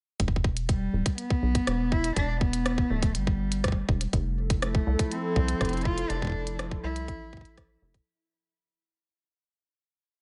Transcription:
0.20 acid bass E1, kick, closed hi-hat
0.28 kick
0.36 kick
0.44 kick
0.57 closed hi-hat
0.69 cello G3, kick, closed hi-hat
0.94 acid bass D1
1.06 kick, closed hi-hat
1.18 cello B3, closed hi-hat
1.30 kick
1.43 acid bass B1
1.55 kick, closed hi-hat
1.67 acid bass E1, cross-stick, closed hi-hat
1.92 cello E4, kick
2.04 closed hi-hat
2.16 acid bass E1, cello D4, kick, closed hi-hat
2.41 cello B3, kick
2.53 closed hi-hat
2.66 cross-stick, closed hi-hat
2.78 kick
2.90 acid bass D1, cello A3
3.03 kick, closed hi-hat
3.15 acid bass G1, cello G3, closed hi-hat
3.27 kick
3.52 closed hi-hat
3.64 kick, cross-stick, closed hi-hat
3.68 kick
3.72 kick
3.89 acid bass E1, kick
4.01 closed hi-hat
4.13 acid bass F1, analog synth pad F3 E4 A4, kick, closed hi-hat
4.50 kick, closed hi-hat
4.62 cello A3, cross-stick, closed hi-hat
4.75 kick
4.87 acid bass C2
4.99 kick, closed hi-hat
5.12 cello C4, closed hi-hat
5.36 acid bass C2, kick
5.48 closed hi-hat
5.61 acid bass F1, kick, cross-stick, closed hi-hat
5.65 closed hi-hat
5.69 closed hi-hat
5.73 closed hi-hat
5.77 closed hi-hat
5.81 closed hi-hat
5.85 cello F4, kick
5.98 closed hi-hat
6.10 acid bass F1, cello D4, closed hi-hat
6.22 kick
6.25 kick
6.27 kick
6.30 kick
6.32 kick
6.47 closed hi-hat
6.59 cross-stick, closed hi-hat
6.71 kick
6.84 acid bass C2, cello E4
6.96 closed hi-hat
7.08 acid bass A1, kick, closed hi-hat
7.33 kick
7.37 kick
7.41 kick
7.45 closed hi-hat
7.57 kick, cross-stick, closed hi-hat
7.82 acid bass F1
7.94 kick, closed hi-hat

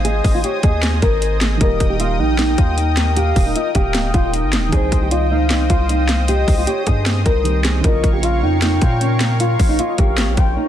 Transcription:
Already playing: 808-style bass G#1, felt piano D#3 G#3 C4 G#4, analog synth pad C5 D#5 G#5 D#6
0.05 nylon-string guitar G#4, soft synth lead D#5, closed hi-hat
0.24 808-style bass G#1, kick, open hi-hat
0.35 nylon-string guitar F4
0.44 nylon-string guitar G4, soft synth lead C#5, closed hi-hat
0.63 808-style bass D#2, nylon-string guitar G#4, soft synth lead D#5, kick, closed hi-hat
0.83 snare, clap, closed hi-hat
1.02 808-style bass G#1, nylon-string guitar A#4, kick, closed hi-hat
1.22 closed hi-hat
1.41 nylon-string guitar G#4, snare, clap, closed hi-hat
1.57 808-style bass D#1, felt piano D#3 G3, analog synth pad A#4 G5 D#6, nylon-string guitar A#4, soft synth lead D#5, kick, closed hi-hat
1.63 felt piano A#3 G4
1.80 808-style bass D#1, kick, closed hi-hat
1.90 nylon-string guitar G4
2.00 nylon-string guitar F4, soft synth lead F5, closed hi-hat
2.19 808-style bass A#1, nylon-string guitar D#4, soft synth lead G5
2.39 nylon-string guitar D#4, snare, clap, closed hi-hat
2.58 808-style bass D#2, nylon-string guitar F4, kick, closed hi-hat
2.78 nylon-string guitar D#4, closed hi-hat
2.97 snare, clap, closed hi-hat
3.17 nylon-string guitar G4, soft synth lead F5, closed hi-hat
3.36 808-style bass D#1, kick, open hi-hat
3.46 nylon-string guitar D#4
3.56 nylon-string guitar F4, soft synth lead D#5, closed hi-hat
3.75 808-style bass D#1, nylon-string guitar G4, soft synth lead F5, kick, closed hi-hat
3.95 808-style bass C#1, snare, clap, closed hi-hat
4.04 808-style bass D#1
4.14 808-style bass D#1, nylon-string guitar F4, soft synth lead G5, kick, closed hi-hat
4.33 nylon-string guitar D#4, closed hi-hat
4.43 808-style bass G1
4.53 snare, clap, closed hi-hat
4.58 808-style bass D#1
4.68 felt piano D#3, nylon-string guitar G#4
4.72 808-style bass C2, felt piano C4, analog synth pad C5 D#6, soft synth lead C5, kick, closed hi-hat
4.77 felt piano D#4
4.92 808-style bass C2, kick, closed hi-hat
5.02 nylon-string guitar G4
5.11 nylon-string guitar F4, soft synth lead D#5, closed hi-hat
5.31 808-style bass C#2, nylon-string guitar D#4, soft synth lead F5
5.50 808-style bass C2, nylon-string guitar D#4, snare, clap, closed hi-hat
5.70 808-style bass C2, nylon-string guitar F4, kick, closed hi-hat
5.89 nylon-string guitar D#4, closed hi-hat
6.09 snare, clap, closed hi-hat
6.28 nylon-string guitar G4, soft synth lead D#5, closed hi-hat
6.48 808-style bass C2, kick, open hi-hat
6.58 nylon-string guitar F4
6.67 nylon-string guitar G4, soft synth lead C#5, closed hi-hat
6.87 808-style bass G2, nylon-string guitar G#4, soft synth lead D#5, kick, closed hi-hat
7.06 snare, clap, closed hi-hat
7.26 808-style bass C2, nylon-string guitar A#4, kick, closed hi-hat
7.43 felt piano D#3 G3 C4, closed hi-hat
7.48 felt piano G4
7.64 nylon-string guitar G#4, snare, clap, closed hi-hat
7.80 felt piano C#3 F3, nylon-string guitar A#4, soft synth lead D#5
7.84 808-style bass A#1, felt piano A#3, analog synth pad A#4 C#5 F5 C#6, kick, closed hi-hat
7.88 felt piano F4
8.04 808-style bass A#1, kick, closed hi-hat
8.13 nylon-string guitar G4
8.23 nylon-string guitar F4, soft synth lead F5, closed hi-hat
8.43 808-style bass F2, nylon-string guitar D#4, soft synth lead G5
8.62 nylon-string guitar D#4, snare, clap, closed hi-hat
8.82 808-style bass A#2, nylon-string guitar F4, kick, closed hi-hat
9.01 nylon-string guitar C#4, closed hi-hat
9.21 snare, clap, closed hi-hat
9.40 nylon-string guitar F4, soft synth lead F5, closed hi-hat
9.59 808-style bass A#1, kick, open hi-hat
9.69 nylon-string guitar D#4
9.79 nylon-string guitar F4, soft synth lead D#5, closed hi-hat
9.98 808-style bass A#1, nylon-string guitar G4, soft synth lead F5, kick, closed hi-hat
10.18 808-style bass G#1, snare, clap, closed hi-hat
10.28 808-style bass A#1
10.37 808-style bass A#1, nylon-string guitar F4, soft synth lead G5, kick, closed hi-hat
10.57 nylon-string guitar D#4

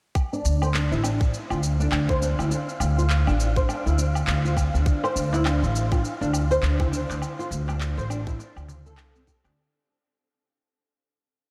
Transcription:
0.15 synth texture F5, kick, low woodblock, shaker
0.33 nylon-string guitar D4, shaker
0.45 upright bass D2, shaker
0.62 nylon-string guitar C5, low woodblock, shaker
0.74 nylon-string guitar D4, clap, shaker
0.91 upright bass A1, nylon-string guitar E4, shaker
1.03 nylon-string guitar D4, low woodblock, shaker
1.21 kick, shaker
1.34 shaker
1.50 upright bass D2, nylon-string guitar F4, low woodblock, shaker
1.63 shaker
1.80 nylon-string guitar D4, shaker
1.92 upright bass D2, clap, low woodblock, shaker
2.09 nylon-string guitar C5, kick, shaker
2.21 nylon-string guitar D4, shaker
2.39 upright bass D2, nylon-string guitar E4, low woodblock, shaker
2.51 nylon-string guitar D4, shaker
2.69 shaker
2.80 upright bass D2, low woodblock, shaker
2.98 nylon-string guitar F4, shaker
3.10 clap, shaker
3.27 upright bass A1, nylon-string guitar D4, low woodblock, shaker
3.40 shaker
3.56 nylon-string guitar C5, kick, shaker
3.68 nylon-string guitar D4, low woodblock, shaker
3.86 upright bass D2, nylon-string guitar E4, shaker
3.98 nylon-string guitar D4, shaker
4.15 low woodblock, shaker
4.27 upright bass D2, clap, shaker
4.45 nylon-string guitar F4, shaker
4.57 kick, low woodblock, shaker
4.74 upright bass D2, nylon-string guitar D4, shaker
4.86 kick, shaker
5.03 nylon-string guitar C5, darbuka ka, low woodblock, shaker
5.15 upright bass D2, nylon-string guitar D4, shaker
5.33 nylon-string guitar E4, darbuka tek, shaker
5.45 nylon-string guitar D4, clap, low woodblock, shaker
5.62 upright bass A1, shaker
5.76 shaker
5.92 nylon-string guitar F4, kick, low woodblock, shaker
6.05 shaker
6.21 upright bass D2, nylon-string guitar D4, shaker
6.33 low woodblock, shaker
6.51 nylon-string guitar C5, shaker
6.62 upright bass D2, nylon-string guitar D4, clap, shaker
6.79 nylon-string guitar E4, kick, darbuka dum, low woodblock, shaker
6.92 nylon-string guitar D4, darbuka ka, shaker
7.09 upright bass D2, darbuka tek, shaker
7.22 low woodblock, shaker
7.39 nylon-string guitar F4, darbuka ka, shaker
7.51 upright bass D2, shaker
7.68 nylon-string guitar D4, darbuka tek, low woodblock, shaker
7.81 clap, shaker
7.97 upright bass A1, nylon-string guitar C5, shaker
8.10 nylon-string guitar D4, low woodblock, shaker
8.27 nylon-string guitar E4, kick, shaker
8.39 nylon-string guitar D4, darbuka ka, shaker
8.56 upright bass D2, low woodblock, shaker
8.68 darbuka dum, shaker
8.86 nylon-string guitar A4, shaker
8.97 upright bass C2, clap, low woodblock, shaker
9.16 nylon-string guitar C4, shaker
9.27 nylon-string guitar G4, kick, darbuka tek, shaker
9.44 upright bass D2, nylon-string guitar D4, darbuka tek, low woodblock, shaker

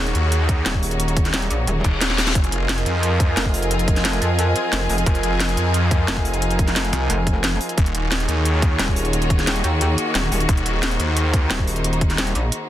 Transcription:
Already playing: detuned saw bass D#1, string section D#3 A#3 D#4 F#4, analog synth pad D#4 G#4 C#5
0.06 closed hi-hat
0.15 detuned saw bass D#2, closed hi-hat
0.32 closed hi-hat
0.49 kick, closed hi-hat
0.66 wobble bass D#1, snare, closed hi-hat
0.74 kick
0.83 open hi-hat
0.91 closed hi-hat
1.00 closed hi-hat
1.08 closed hi-hat
1.17 kick, closed hi-hat
1.25 snare, closed hi-hat
1.34 snare, closed hi-hat
1.42 closed hi-hat
1.51 wobble bass A#1, closed hi-hat
1.67 wobble bass D#1, closed hi-hat, reverse cymbal
1.84 detuned saw bass D#1, kick, closed hi-hat
2.01 snare, closed hi-hat
2.10 snare
2.18 snare, open hi-hat
2.27 snare, closed hi-hat, zap
2.35 detuned saw bass F1, string section F3 C4 F4 G#4, analog synth pad F4 D#5, kick, closed hi-hat
2.41 analog synth pad A#4, closed hi-hat
2.52 closed hi-hat
2.64 analog synth pad G#5
2.69 snare, closed hi-hat
2.78 closed hi-hat
2.86 detuned saw bass F2, closed hi-hat
3.03 closed hi-hat
3.20 kick, closed hi-hat
3.37 wobble bass F1, snare, closed hi-hat
3.45 kick
3.54 open hi-hat
3.62 closed hi-hat
3.71 closed hi-hat
3.79 closed hi-hat
3.88 kick, closed hi-hat
3.96 snare, closed hi-hat
4.05 snare, closed hi-hat
4.13 closed hi-hat
4.22 wobble bass F2, closed hi-hat
4.39 closed hi-hat
4.56 closed hi-hat
4.73 wobble bass F1, snare, closed hi-hat
4.89 wobble bass F1, open hi-hat
4.98 closed hi-hat
5.06 detuned saw bass F1, string section D#4, kick, closed hi-hat
5.15 closed hi-hat
5.23 closed hi-hat
5.40 snare, closed hi-hat
5.49 closed hi-hat
5.57 detuned saw bass F2, closed hi-hat
5.74 closed hi-hat
5.91 kick, closed hi-hat
6.08 wobble bass F1, snare, closed hi-hat
6.17 kick
6.25 open hi-hat
6.34 closed hi-hat
6.42 closed hi-hat
6.51 closed hi-hat
6.59 kick, closed hi-hat
6.67 snare, closed hi-hat
6.76 snare, closed hi-hat
6.84 closed hi-hat
6.93 detuned saw bass C2, closed hi-hat
7.10 wobble bass F1, closed hi-hat
7.27 kick, closed hi-hat
7.44 snare, closed hi-hat
7.61 open hi-hat
7.69 closed hi-hat
7.78 detuned saw bass D#1, string section D#3 A#3 F4 F#4, analog synth pad D#4, kick, closed hi-hat
7.86 closed hi-hat
7.90 analog synth pad G#4
7.95 analog synth pad C#5, closed hi-hat
8.12 snare, closed hi-hat
8.20 closed hi-hat
8.28 detuned saw bass D#2, closed hi-hat
8.45 closed hi-hat
8.62 kick, closed hi-hat
8.79 wobble bass D#1, snare, closed hi-hat
8.88 kick
8.96 open hi-hat
9.05 closed hi-hat
9.13 closed hi-hat
9.22 closed hi-hat
9.30 kick, closed hi-hat
9.39 snare, closed hi-hat
9.47 snare, closed hi-hat
9.56 closed hi-hat
9.64 wobble bass D#2, closed hi-hat
9.81 closed hi-hat
9.98 closed hi-hat
10.15 wobble bass D#1, snare, closed hi-hat
10.32 wobble bass D#1, open hi-hat
10.40 closed hi-hat
10.49 detuned saw bass D#1, string section D#4, kick, closed hi-hat
10.53 analog synth pad C5
10.57 closed hi-hat
10.66 closed hi-hat
10.83 snare, closed hi-hat
10.91 closed hi-hat
11.00 detuned saw bass D#2, closed hi-hat
11.17 closed hi-hat
11.34 kick, closed hi-hat
11.51 wobble bass D#1, snare, closed hi-hat
11.59 kick
11.67 open hi-hat
11.76 closed hi-hat
11.84 closed hi-hat
11.93 closed hi-hat
12.01 kick, closed hi-hat
12.10 snare, closed hi-hat
12.18 snare, closed hi-hat
12.27 closed hi-hat
12.35 wobble bass A#1, closed hi-hat
12.52 closed hi-hat

